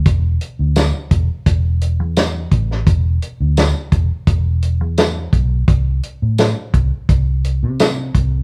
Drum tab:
HH |x-x-x-x-x-x-x-x-|x-x-x-x-x-x-x-x-|x-x-x-x-x-x-x-x-|
TB |----x-------x---|----x-------x---|----x-------x---|
SD |----o-------o--o|----o-------o---|----o-------o---|
BD |o-----o-o-----o-|o-----o-o-----o-|o-----o-o-----o-|